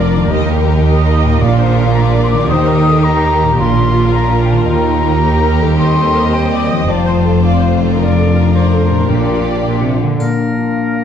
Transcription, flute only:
0.00 1.22 A#4 medium
1.40 1.91 F5 medium
1.94 2.00 A#5 medium
2.23 2.27 C6 medium
2.30 2.49 D6 medium
2.49 3.05 D#6 medium
3.04 3.58 A#5 medium
3.59 4.13 C6 medium
4.14 4.41 A#5 medium
4.44 4.53 G5 medium
4.51 4.68 A5 medium
4.69 5.77 A#5 medium
5.78 6.34 C6 medium
6.33 6.88 G5 medium
6.88 7.46 A5 medium
7.44 7.79 F5 medium
8.00 8.50 D5 medium
8.54 9.11 C5 medium
9.09 10.02 A#4 medium
10.18 11.04 F5 soft

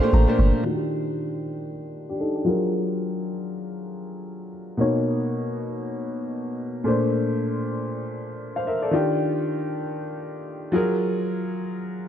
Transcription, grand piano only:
0.00 0.01 A#2 medium
0.00 0.22 A#2 medium
0.00 0.02 A3 medium
0.00 0.22 A3 medium
0.00 0.03 D4 medium
0.00 0.22 D4 medium
0.00 0.66 G4 loud
0.00 0.03 C5 loud
0.00 0.23 C5 loud
0.00 0.11 F5 medium
0.13 0.61 A#5 medium
0.27 0.58 A#2 medium
0.27 0.58 A3 medium
0.27 0.59 D4 medium
0.27 0.59 C5 loud
0.63 2.42 D#3 medium
0.63 1.66 D4 medium
0.63 1.67 F4 medium
0.63 0.73 F#4 medium
0.73 1.70 G4 medium
2.09 2.20 D4 medium
2.09 2.20 G4 medium
2.20 2.35 D#4 medium
2.20 2.34 A4 medium
2.36 2.60 D4 medium
2.36 2.60 G4 medium
2.45 4.48 F#3 medium
2.45 4.49 F4 medium
2.45 4.49 G#4 medium
2.45 4.50 A#4 medium
4.77 6.81 B2 medium
4.77 6.81 A#3 medium
4.77 6.82 D#4 medium
4.77 6.83 C#5 medium
6.84 8.88 A#2 medium
6.84 8.88 A3 medium
6.84 8.89 D4 medium
6.84 8.13 C5 medium
8.56 8.67 C5 medium
8.56 8.66 F5 medium
8.67 8.81 A#4 medium
8.67 8.81 E5 medium
8.82 9.07 A4 medium
8.82 9.06 D5 medium
8.91 10.69 D#3 medium
8.91 10.70 D4 medium
8.91 10.70 F4 medium
8.91 10.71 G4 medium
10.72 12.08 F#3 medium
10.72 12.08 F4 medium
10.72 12.08 G#4 medium
10.72 12.08 A#4 medium

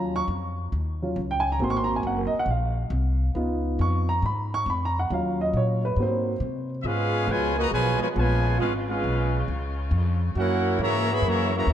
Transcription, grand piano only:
0.00 0.19 F#3 medium
0.00 0.19 C#4 soft
0.00 0.19 F4 medium
0.00 0.15 A#5 medium
0.16 0.24 C#6 loud
1.02 1.15 F#3 soft
1.02 1.15 C#4 soft
1.02 1.16 F4 medium
1.31 1.45 G5 medium
1.40 1.50 G#5 medium
1.52 1.60 A#5 medium
1.60 2.29 A#3 medium
1.60 2.30 C4 medium
1.60 2.30 F#4 medium
1.60 1.71 C6 medium
1.70 1.75 C#6 loud
1.77 1.90 C6 medium
1.84 1.94 A#5 medium
1.96 2.04 G#5 medium
2.07 2.20 F#5 medium
2.18 2.33 A#4 soft
2.27 2.37 D#5 medium
2.39 2.47 F#5 medium
2.50 3.33 F5 medium
3.35 4.04 B3 medium
3.35 4.05 D#4 medium
3.35 4.05 F4 medium
3.81 4.08 C#6 medium
4.09 4.23 A#5 medium
4.26 4.52 B5 medium
4.54 4.67 C#6 loud
4.70 4.82 B5 medium
4.85 4.97 A#5 medium
4.99 5.12 F#5 medium
5.11 5.80 F#3 medium
5.11 5.80 C#4 medium
5.11 5.80 F4 medium
5.11 5.40 F5 medium
5.41 5.54 D#5 medium
5.57 5.84 C#5 medium
5.85 5.98 B4 medium
5.99 6.32 A#3 soft
5.99 6.32 C4 soft
5.99 6.32 F#4 medium
5.99 6.69 C5 medium

